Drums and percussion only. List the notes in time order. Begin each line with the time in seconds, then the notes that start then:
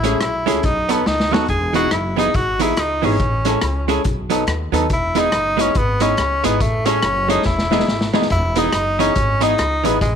0.04 closed hi-hat
0.21 cross-stick, closed hi-hat
0.48 closed hi-hat
0.63 kick, closed hi-hat
0.89 closed hi-hat
1.06 snare
1.20 snare
1.34 snare
1.48 kick, closed hi-hat
1.74 closed hi-hat
1.91 cross-stick, closed hi-hat
2.19 closed hi-hat
2.34 kick, closed hi-hat
2.60 closed hi-hat
2.77 cross-stick, closed hi-hat
3.03 open hi-hat
3.20 kick, closed hi-hat
3.45 closed hi-hat
3.61 cross-stick, closed hi-hat
3.89 closed hi-hat
4.04 kick, closed hi-hat
4.30 closed hi-hat
4.47 cross-stick, closed hi-hat
4.74 closed hi-hat
4.90 kick, closed hi-hat
5.15 closed hi-hat
5.32 cross-stick, closed hi-hat
5.59 closed hi-hat
5.75 kick, closed hi-hat
6.00 closed hi-hat
6.17 cross-stick, closed hi-hat
6.44 closed hi-hat
6.61 kick, closed hi-hat
6.86 closed hi-hat
7.02 cross-stick, closed hi-hat
7.30 closed hi-hat
7.45 kick, snare
7.59 snare
7.72 snare
7.80 snare
7.88 snare
8.01 snare
8.14 snare
8.22 snare
8.30 kick, closed hi-hat
8.56 closed hi-hat
8.72 cross-stick, closed hi-hat
9.00 closed hi-hat
9.15 kick, closed hi-hat
9.41 closed hi-hat
9.58 cross-stick, closed hi-hat
9.85 closed hi-hat
10.01 kick, closed hi-hat